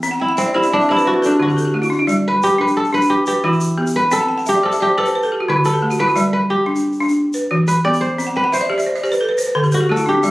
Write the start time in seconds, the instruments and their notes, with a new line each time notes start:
Already playing: kora E4, balafon G4
0.03 balafon C4, shaker
0.11 balafon F#5
0.20 kora E4, balafon G5
0.29 balafon F#5
0.37 kora C4, balafon E5, shaker
0.47 balafon D5
0.54 kora E4, balafon G4 C5
0.63 balafon D5, shaker
0.73 kora D4, balafon E5
0.80 balafon D5, shaker
0.89 kora E4, balafon G4 C5, shaker
0.97 balafon B4, shaker
1.05 kora F#4, balafon C5
1.14 balafon B4
1.22 kora D4, balafon A4, shaker
1.31 balafon G4
1.39 balafon D3 F#4, kora F#4
1.48 balafon G4, shaker
1.57 balafon A4, shaker
1.65 balafon G4
1.74 balafon A3 F#4
1.82 balafon E4, shaker
1.90 balafon D4, shaker
1.99 balafon E4
2.07 balafon G3 D5, shaker
2.28 kora B4
2.43 kora G4, shaker
2.58 balafon D4, kora B4
2.68 shaker
2.77 kora A4
2.85 shaker
2.92 balafon D4, kora B4, shaker
3.01 shaker
3.10 kora G4
3.26 kora G4, balafon B4, shaker
3.44 balafon E3 F#4, kora E4
3.53 shaker
3.60 shaker
3.78 balafon B3 G4
3.87 shaker
3.96 kora B4
4.11 balafon C4 G5, kora A4, shaker
4.21 balafon F#5
4.29 balafon G5
4.38 balafon F#5, shaker
4.46 kora G4, balafon E5, shaker
4.55 balafon D5
4.63 balafon G4 C5, kora A4
4.72 balafon E5, shaker
4.80 kora G4, balafon D5, shaker
4.89 balafon C5
4.98 balafon G4 B4, kora A4
5.06 balafon C5, shaker
5.15 balafon B4
5.22 balafon A4, shaker
5.32 balafon G4
5.40 balafon F#4
5.48 balafon D3 E4, kora B4
5.57 balafon F#4
5.65 balafon G4, kora A4, shaker
5.73 balafon A4, shaker
5.82 balafon A3 G4
5.90 balafon F#4, shaker
5.99 balafon E4, kora B4
6.08 balafon F#4, shaker
6.16 balafon G3 D5, shaker
6.33 kora B4
6.50 kora G4
6.66 balafon D4
6.76 shaker
6.92 shaker
7.00 balafon D4, shaker
7.09 shaker
7.33 balafon B4, shaker
7.51 balafon E3 F#4
7.68 kora B4, shaker
7.85 balafon B3 G4, kora D5
7.94 shaker
8.01 kora C5, shaker
8.18 balafon C4, shaker
8.27 balafon F#5
8.36 kora B4, balafon G5
8.44 balafon F#5
8.52 kora C5, balafon E5, shaker
8.61 balafon D5
8.70 balafon G4 E5
8.78 balafon D5, shaker
8.86 balafon C5
8.96 balafon D5, shaker
9.04 balafon G4 C5, shaker
9.12 balafon B4, shaker
9.21 balafon A4
9.29 balafon B4
9.38 balafon C5, shaker
9.47 balafon B4
9.55 balafon D3 A4
9.64 balafon G4, shaker
9.72 kora F#4, balafon A4, shaker
9.80 balafon G4
9.89 balafon A3 F#4, kora A4
9.97 balafon E4, shaker
10.06 balafon D4, kora G4
10.15 balafon C4
10.23 balafon G3 D5, shaker